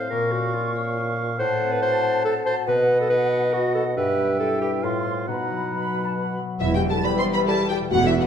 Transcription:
0.00 0.13 A2 soft
0.00 0.13 C4 soft
0.00 0.53 F4 soft
0.00 0.13 C5 soft
0.00 1.40 F5 medium
0.10 1.37 A#2 medium
0.10 1.41 A#2 medium
0.10 0.34 A#4 medium
0.10 1.37 C#6 medium
0.32 1.17 C#4 soft
0.32 0.55 F#4 medium
0.53 0.75 F4 medium
0.53 0.96 F4 soft
0.76 1.41 C#5 soft
0.97 1.41 F4 medium
1.18 1.41 C#4 soft
1.39 2.38 A2 medium
1.39 2.69 A2 medium
1.39 1.73 C5 medium
1.39 2.40 F#5 medium
1.39 2.64 A5 medium
1.61 2.69 C4 soft
1.72 1.81 B4 medium
1.82 2.45 F#4 soft
1.82 2.24 C5 loud
2.04 2.69 C5 medium
2.25 2.34 A4 medium
2.25 2.69 A4 medium
2.46 3.52 F#4 soft
2.46 2.56 C5 medium
2.67 3.93 B2 medium
2.67 3.99 B2 medium
2.67 2.99 B4 medium
2.67 3.93 D#5 medium
2.67 3.97 F#5 medium
2.88 4.17 B3 medium
3.00 3.09 A4 medium
3.10 3.74 D#4 soft
3.10 3.55 B4 loud
3.32 4.60 B4 medium
3.53 3.99 F#4 medium
3.53 3.74 F#4 medium
3.75 3.99 D#4 soft
3.75 3.84 A4 medium
3.97 4.82 G2 medium
3.97 4.86 G2 medium
3.97 4.39 B4 medium
3.97 4.85 E5 medium
3.97 4.82 G5 medium
4.18 4.85 B3 soft
4.40 4.85 E4 soft
4.40 4.61 A4 medium
4.61 4.71 G4 medium
4.61 4.85 B4 soft
4.83 5.27 A2 soft
4.83 5.29 A2 medium
4.83 5.27 F4 medium
4.83 5.27 F5 soft
4.83 5.28 C6 soft
5.05 5.29 F4 soft
5.05 5.30 C5 soft
5.27 6.62 B2 soft
5.27 6.36 B2 soft
5.27 6.15 D#4 medium
5.27 6.36 F#5 soft
5.27 5.67 B5 soft
5.50 6.37 F#3 soft
5.72 6.14 F#4 soft
5.72 6.03 B5 medium
5.94 6.92 B4 soft
6.06 6.17 A5 soft
6.16 6.62 F#4 soft
6.16 6.40 B5 soft
6.38 6.62 F#3 soft
6.60 6.97 E1 medium
6.60 7.91 E2 medium
6.60 6.97 E2 medium
6.60 6.74 E4 medium
6.60 6.74 E5 medium
6.60 6.66 E5 medium
6.71 7.69 G3 soft
6.71 6.90 G4 medium
6.71 6.81 G5 medium
6.71 6.90 G5 medium
6.82 7.58 E4 soft
6.89 6.97 A4 medium
6.89 7.04 A5 medium
6.89 6.96 A5 medium
6.93 8.24 B4 soft
7.04 7.20 G3 medium
7.04 7.88 G3 medium
7.04 7.20 E4 soft
7.04 7.47 G4 medium
7.04 7.11 B4 medium
7.04 7.19 B5 medium
7.04 7.10 B5 medium
7.04 7.20 B5 medium
7.04 7.11 B5 medium
7.15 7.26 C5 medium
7.15 7.36 E5 soft
7.15 7.24 C6 medium
7.15 7.25 C6 medium
7.26 8.27 B5 medium
7.33 7.48 B4 medium
7.33 7.39 B5 medium
7.33 7.40 B5 medium
7.37 7.94 E5 soft
7.47 7.64 G3 medium
7.47 7.64 E4 medium
7.47 7.94 G4 medium
7.47 7.57 A4 medium
7.47 7.55 A5 medium
7.47 7.53 A5 medium
7.47 7.70 A5 medium
7.47 7.64 B5 soft
7.59 7.93 E4 soft
7.69 7.94 G3 soft
7.69 7.80 G4 medium
7.69 7.77 G5 medium
7.69 7.75 G5 medium
7.69 7.78 G5 medium
7.81 7.94 B2 soft
7.91 8.27 E1 medium
7.91 8.27 E2 medium
7.91 8.27 A3 medium
7.91 7.97 F#4 medium
7.91 8.06 F#5 medium
8.03 8.27 A3 medium
8.03 8.12 E4 medium
8.03 8.11 E5 medium
8.03 8.12 E5 medium
8.03 8.21 E5 medium
8.14 8.27 F#4 medium
8.20 8.23 F#4 medium
8.20 8.27 D#5 medium
8.20 8.21 F#5 medium
8.20 8.22 F#5 medium

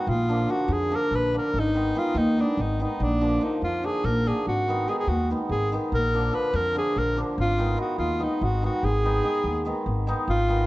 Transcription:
0.00 0.12 D#3 medium
0.00 0.12 G#3 medium
0.00 0.10 F#4 medium
0.07 0.44 A#1 medium
0.07 0.53 F4 loud
0.29 0.47 D3 medium
0.29 0.48 F3 medium
0.29 0.44 A#3 medium
0.29 0.44 D4 medium
0.48 0.89 D3 medium
0.48 0.90 F3 medium
0.48 0.64 A#3 medium
0.48 0.64 D4 medium
0.48 0.74 F#4 medium
0.68 0.94 F2 medium
0.72 0.97 G#4 medium
0.90 1.32 D3 medium
0.90 1.33 F3 medium
0.90 1.06 A#3 medium
0.90 1.06 D4 medium
0.95 1.16 A#4 medium
1.11 1.37 A#1 medium
1.11 1.36 B4 medium
1.33 1.59 D3 medium
1.33 1.59 F3 medium
1.33 1.49 A#3 medium
1.33 1.49 D4 medium
1.38 1.61 A#4 medium
1.54 1.90 G#1 medium
1.59 2.00 D#4 loud
1.74 1.94 D#3 medium
1.74 1.94 G#3 medium
1.74 1.90 B3 medium
1.74 1.90 D#4 medium
1.95 2.35 D#3 medium
1.95 2.35 G#3 medium
1.95 2.10 B3 medium
1.95 2.10 D#4 medium
1.95 2.19 F4 medium
2.14 2.40 D#2 medium
2.14 2.43 D#4 loud
2.36 2.78 D#3 medium
2.36 2.79 G#3 soft
2.36 2.52 B3 soft
2.36 2.53 D#4 medium
2.41 2.63 D4 medium
2.57 2.83 G#1 medium
2.61 2.82 D#4 medium
2.80 3.05 D#3 medium
2.80 3.05 G#3 medium
2.80 2.95 B3 medium
2.80 2.95 D#4 medium
2.80 3.05 D#4 medium
3.00 3.37 A#1 medium
3.00 3.45 D4 medium
3.21 3.39 D3 medium
3.21 3.40 F3 medium
3.21 3.36 A#3 medium
3.21 3.36 D4 medium
3.41 3.81 D3 medium
3.41 3.82 F3 medium
3.41 3.56 A#3 medium
3.41 3.56 D4 medium
3.41 3.62 D#4 medium
3.62 3.87 F2 medium
3.62 3.87 F4 medium
3.83 4.25 D3 medium
3.83 4.25 F3 soft
3.83 3.98 A#3 soft
3.83 3.99 D4 medium
3.83 4.06 G#4 medium
4.04 4.29 A#1 medium
4.04 4.29 A#4 medium
4.26 4.51 D3 medium
4.26 4.51 F3 soft
4.26 4.41 A#3 medium
4.26 4.41 D4 medium
4.26 4.47 G#4 medium
4.47 4.83 G#1 medium
4.47 4.90 F#4 medium
4.68 4.87 D#3 medium
4.68 4.86 G#3 medium
4.68 4.83 B3 medium
4.68 4.83 D#4 medium
4.87 5.29 D#3 medium
4.87 5.30 G#3 medium
4.87 5.02 B3 medium
4.87 5.02 D#4 medium
4.87 4.91 G#4 medium
4.87 4.96 G#4 medium
4.99 5.10 G#4 medium
5.07 5.32 D#2 medium
5.07 5.30 F#4 medium
5.30 5.71 D#3 medium
5.30 5.71 G#3 medium
5.30 5.45 B3 medium
5.30 5.45 D#4 medium
5.49 5.75 G#1 medium
5.49 5.71 G#4 medium
5.72 5.97 D#3 medium
5.72 5.97 G#3 medium
5.72 5.87 B3 medium
5.72 5.87 D#4 medium
5.92 6.28 A#1 medium
5.92 6.36 A#4 loud
6.14 6.31 D3 medium
6.14 6.32 F3 medium
6.14 6.28 A#3 medium
6.14 6.29 D4 medium
6.32 6.74 D3 medium
6.32 6.74 F3 medium
6.32 6.47 A#3 medium
6.32 6.48 D4 medium
6.32 6.57 B4 medium
6.53 6.79 F2 medium
6.53 6.76 A#4 loud
6.75 7.15 D3 medium
6.75 7.16 F3 medium
6.75 6.90 A#3 medium
6.75 6.90 D4 medium
6.75 7.00 G#4 medium
6.96 7.21 A#1 medium
6.96 7.19 A#4 medium
7.17 7.42 D3 medium
7.17 7.42 F3 medium
7.17 7.32 A#3 medium
7.17 7.32 D4 medium
7.38 7.74 G#1 medium
7.38 7.77 F4 loud
7.58 7.76 D#3 medium
7.58 7.76 G#3 medium
7.58 7.73 B3 medium
7.58 7.73 D#4 medium
7.77 8.18 D#3 medium
7.77 8.18 G#3 medium
7.77 7.92 B3 medium
7.77 7.93 D#4 medium
7.77 7.98 F#4 medium
7.98 8.24 D#2 medium
7.98 8.24 F4 medium
8.19 8.61 D#3 medium
8.19 8.62 G#3 medium
8.19 8.34 B3 medium
8.19 8.35 D#4 medium
8.19 8.45 D#4 medium
8.41 8.66 G#1 medium
8.41 8.64 F#4 medium
8.62 8.88 D#3 medium
8.62 8.88 G#3 medium
8.62 8.78 B3 medium
8.62 8.78 D#4 medium
8.62 8.86 F#4 medium
8.83 9.19 G#1 medium
8.83 9.86 G#4 medium
9.04 9.22 D#3 medium
9.04 9.23 G#3 medium
9.04 9.19 B3 medium
9.04 9.19 D#4 medium
9.23 9.64 D#3 medium
9.23 9.65 G#3 medium
9.23 9.38 B3 soft
9.23 9.39 D#4 medium
9.44 9.69 D#2 medium
9.65 10.06 D#3 medium
9.65 10.07 G#3 medium
9.65 9.80 B3 medium
9.65 9.81 D#4 medium
9.86 10.11 G#1 medium
10.07 10.33 D#3 medium
10.07 10.33 G#3 medium
10.07 10.22 B3 medium
10.07 10.23 D#4 medium
10.28 10.64 G#1 medium
10.28 10.67 F4 loud
10.48 10.67 D#3 medium
10.48 10.67 G#3 medium
10.48 10.63 B3 medium
10.48 10.64 D#4 medium

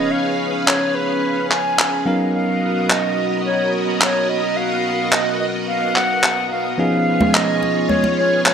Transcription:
0.00 2.03 F3 medium
0.00 2.03 B3 medium
0.00 2.02 C#4 medium
0.00 2.03 C#4 medium
0.00 2.04 D#4 medium
0.00 2.02 G#4 medium
0.00 2.04 G#4 medium
0.00 2.02 B4 medium
0.00 0.12 D#5 medium
0.00 2.02 F5 medium
0.00 sub drop medium
0.11 0.68 F5 medium
0.67 0.96 C#5 medium
0.67 clap loud
0.95 1.50 B4 medium
1.50 2.08 G#5 loud
1.50 clap medium
1.79 clap loud
2.05 6.47 F#3 medium
2.05 6.48 B3 medium
2.05 6.75 B3 medium
2.05 6.48 C#4 medium
2.05 6.48 D#4 medium
2.05 6.75 F#4 medium
2.05 6.75 A#4 medium
2.05 6.48 A#4 medium
2.05 6.75 D#5 medium
2.05 2.33 F5 medium
2.34 2.91 F5 medium
2.89 3.45 D#5 medium
2.89 clap loud
3.45 3.71 C#5 medium
4.01 4.30 C#5 medium
4.01 clap loud
4.29 4.58 D#5 medium
4.57 5.13 F5 medium
5.12 5.39 D#5 medium
5.12 clap loud
5.39 5.46 D#5 medium
5.68 5.97 F5 medium
5.95 6.50 F#5 loud
5.95 clap medium
6.23 clap loud
6.51 6.77 F5 medium
6.78 8.54 F3 medium
6.78 8.54 B3 medium
6.78 8.54 C#4 medium
6.78 8.54 D#4 medium
6.78 8.54 F4 medium
6.78 8.54 G#4 medium
6.78 8.54 C#5 medium
6.78 7.35 F5 medium
7.21 high conga medium
7.34 7.90 D#5 medium
7.34 clap loud
7.63 muted conga soft
7.89 8.16 C#5 medium
7.89 high conga medium
8.04 muted conga soft
8.17 8.43 C#5 medium
8.45 8.54 C#5 medium
8.45 clap loud

